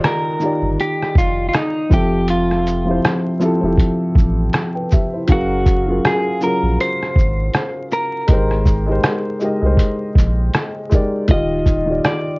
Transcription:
0.00 0.40 D#3 medium
0.00 0.41 D#4 medium
0.00 0.42 F4 medium
0.00 0.44 G4 medium
0.00 0.45 D5 medium
0.04 0.80 A#4 medium
0.04 cross-stick loud
0.04 closed hi-hat medium
0.40 1.64 D#3 medium
0.40 1.65 D#4 medium
0.40 1.66 F4 medium
0.40 shaker soft
0.44 1.66 G4 medium
0.44 1.67 D5 medium
0.62 0.77 G1 medium
0.80 1.18 G4 medium
0.80 closed hi-hat medium
1.02 cross-stick soft
1.15 1.50 F1 medium
1.15 1.48 F4 medium
1.15 kick medium
1.15 shaker soft
1.49 1.54 F4 medium
1.54 1.93 D#4 medium
1.54 cross-stick medium
1.54 closed hi-hat soft
1.90 3.00 F1 medium
1.90 2.67 F3 medium
1.90 2.68 C4 medium
1.90 2.30 G4 medium
1.90 2.69 E5 medium
1.90 kick loud
1.90 shaker medium
1.94 2.69 G4 medium
1.94 2.70 A4 medium
2.28 3.00 F4 medium
2.28 closed hi-hat medium
2.51 cross-stick soft
2.67 closed hi-hat soft
2.67 shaker soft
2.85 3.31 F3 medium
2.85 3.32 C4 medium
2.85 3.32 E4 medium
2.89 3.33 G4 medium
2.89 3.34 C5 medium
3.05 cross-stick loud
3.05 closed hi-hat medium
3.40 3.58 F3 medium
3.40 3.58 C4 medium
3.40 3.59 E4 medium
3.40 3.60 G4 medium
3.40 shaker soft
3.45 3.60 A4 medium
3.61 3.77 F1 medium
3.61 4.68 F3 medium
3.61 4.69 C4 medium
3.61 4.54 E4 medium
3.66 4.55 G4 medium
3.66 4.56 A4 medium
3.78 kick medium
3.78 closed hi-hat medium
4.15 4.50 A1 medium
4.15 kick loud
4.15 shaker soft
4.53 cross-stick medium
4.53 closed hi-hat soft
4.75 4.91 B4 soft
4.75 4.90 G5 medium
4.91 5.12 G4 medium
4.91 5.12 E5 medium
4.91 kick medium
4.91 shaker medium
5.13 5.49 E4 soft
5.13 5.48 C5 medium
5.28 6.00 F#1 loud
5.28 5.75 F#3 medium
5.28 5.76 C#4 medium
5.28 5.76 F5 medium
5.28 kick loud
5.28 closed hi-hat medium
5.32 6.06 F#4 medium
5.32 5.77 G#4 medium
5.32 5.78 A#4 medium
5.66 kick medium
5.66 closed hi-hat soft
5.66 shaker soft
5.86 6.32 F#3 medium
5.86 6.32 C#4 medium
5.86 6.33 F4 medium
5.86 6.34 G#4 medium
5.92 6.34 A#4 medium
6.05 6.43 G#4 medium
6.05 cross-stick loud
6.05 closed hi-hat medium
6.41 7.65 F#3 medium
6.41 7.66 C#4 medium
6.41 7.66 F4 medium
6.41 6.80 A#4 medium
6.41 shaker soft
6.45 7.67 G#4 medium
6.45 7.68 A#4 medium
6.63 6.77 A#1 medium
6.80 7.88 C5 medium
6.80 closed hi-hat medium
7.02 cross-stick soft
7.15 7.50 G#1 medium
7.15 kick medium
7.15 shaker soft
7.53 cross-stick loud
7.53 closed hi-hat soft
7.92 9.38 A#4 medium
7.92 shaker soft
8.27 9.00 G#1 loud
8.27 8.75 G#3 medium
8.27 8.76 D#4 medium
8.27 8.76 G4 medium
8.27 kick loud
8.27 closed hi-hat medium
8.31 8.77 A#4 medium
8.31 8.78 C5 medium
8.51 cross-stick soft
8.66 kick medium
8.66 shaker soft
8.86 9.32 G#3 medium
8.86 9.32 D#4 medium
8.86 9.33 G4 medium
8.90 9.34 A#4 medium
8.90 9.34 C5 medium
9.04 cross-stick loud
9.04 closed hi-hat medium
9.39 9.58 G#3 medium
9.39 9.58 D#4 medium
9.39 9.59 G4 medium
9.39 shaker soft
9.43 9.60 A#4 medium
9.43 9.60 D#5 medium
9.61 9.77 C2 medium
9.61 10.68 G#3 medium
9.61 10.69 D#4 medium
9.61 10.70 G4 medium
9.61 10.70 A#4 medium
9.66 10.71 C5 medium
9.77 kick medium
9.77 closed hi-hat medium
10.15 10.50 A#1 medium
10.15 kick medium
10.15 closed hi-hat soft
10.15 shaker soft
10.53 cross-stick loud
10.53 closed hi-hat medium
10.90 11.22 G#3 medium
10.90 11.23 D#4 medium
10.90 11.23 G4 medium
10.90 kick medium
10.90 shaker medium
10.94 11.24 A#4 medium
10.94 11.25 D5 medium
11.28 12.00 D#1 medium
11.28 11.75 D#3 medium
11.28 11.76 D#4 medium
11.28 11.77 F4 medium
11.28 12.05 D#5 loud
11.28 kick loud
11.28 closed hi-hat medium
11.32 11.77 G4 medium
11.32 11.78 D#5 medium
11.66 kick medium
11.66 closed hi-hat soft
11.66 shaker soft
11.86 12.31 D#3 medium
11.86 12.32 D#4 medium
11.86 12.33 F4 medium
11.90 12.33 G4 medium
11.90 12.34 D5 medium
12.04 12.39 D5 medium
12.04 cross-stick medium
12.04 closed hi-hat soft

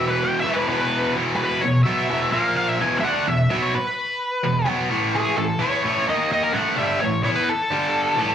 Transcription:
0.00 0.44 E2 medium
0.00 0.44 B2 medium
0.00 0.43 E3 loud
0.08 0.23 B4 loud
0.24 0.38 G5 loud
0.39 0.54 E5 medium
0.44 0.66 E2 medium
0.44 0.67 B2 medium
0.44 0.67 E3 medium
0.54 0.67 B4 medium
0.67 1.14 E2 medium
0.67 1.15 B2 medium
0.67 1.15 E3 medium
0.67 1.14 B4 medium
1.16 1.62 E2 medium
1.16 1.62 B2 loud
1.16 1.63 E3 loud
1.36 1.62 B4 medium
1.61 1.82 E2 medium
1.61 1.82 B2 medium
1.61 1.83 C#5 medium
1.83 2.09 B2 medium
1.83 2.09 F#3 medium
1.83 2.09 B3 loud
1.83 2.32 E5 medium
2.10 2.32 E2 medium
2.10 2.32 B2 loud
2.10 2.33 E3 medium
2.32 2.79 A#2 loud
2.32 2.79 F3 loud
2.32 2.80 A#3 loud
2.32 2.55 F5 loud
2.57 2.69 F5 loud
2.69 2.81 E5 medium
2.81 3.03 E2 medium
2.81 3.03 B2 loud
2.81 3.03 E3 loud
2.81 2.99 G#5 loud
2.97 3.03 E5 medium
3.03 3.26 D3 medium
3.03 3.26 A3 medium
3.03 3.26 D4 loud
3.03 3.28 F#5 loud
3.27 3.45 E2 medium
3.27 3.46 B2 medium
3.27 3.50 E5 medium
3.50 3.73 B2 loud
3.50 3.73 F#3 loud
3.50 3.74 B3 loud
3.50 3.62 E5 medium
3.62 3.74 C#5 medium
3.74 4.68 B4 medium
4.44 4.62 E2 medium
4.44 4.63 B2 medium
4.65 4.89 B2 medium
4.65 4.89 F#3 medium
4.65 4.89 B3 loud
4.90 5.36 A2 medium
4.90 5.36 E3 medium
4.90 5.37 A3 loud
5.15 5.38 G#4 medium
5.37 5.56 A2 medium
5.37 5.56 E3 medium
5.37 5.62 A4 medium
5.59 5.83 E3 medium
5.59 5.83 B3 medium
5.59 5.84 E4 medium
5.59 6.05 C#5 loud
5.84 6.07 A2 medium
5.84 6.07 E3 medium
5.84 6.07 A3 loud
6.07 6.53 D#3 medium
6.07 6.54 A#3 loud
6.07 6.54 D#4 loud
6.07 6.30 D#5 loud
6.32 6.43 D#5 loud
6.43 6.55 A#4 medium
6.53 6.77 A2 medium
6.53 6.77 E3 loud
6.53 6.77 A3 loud
6.53 6.77 F#5 loud
6.76 7.00 G2 medium
6.76 7.00 D3 medium
6.76 7.00 G3 loud
6.76 6.99 E5 loud
7.00 7.20 A2 medium
7.00 7.20 E3 medium
7.00 7.22 C#5 medium
7.23 7.47 E3 medium
7.23 7.47 B3 loud
7.23 7.48 E4 loud
7.23 7.28 C#5 medium
7.36 7.49 B4 medium
7.49 8.35 A4 medium
7.72 8.18 G2 medium
7.72 8.17 D3 medium
7.72 8.18 G3 medium
8.17 8.35 A2 medium
8.17 8.35 E3 medium
8.17 8.35 A3 medium

